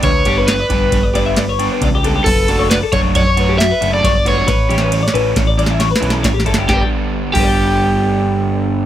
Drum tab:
CC |------------------------------|x-----------------------------|------------------------------|---------x--------------------|
RD |x--x--x--x--x--x--x--x--x--x--|---x--x--x--x--x--x--x--x--x--|x--x--x--x--x--x--x--x--x--x--|------------------------------|
SD |---o--o--o-----o--o-----------|------o--o--------o--------o--|o---o---o---o---o-o-o-o-o-o-o-|o-----------------------------|
BD |o--------o--o-----------o-----|o--------o--o-----------o-----|o-----------o-----------o-----|o--------o--------------------|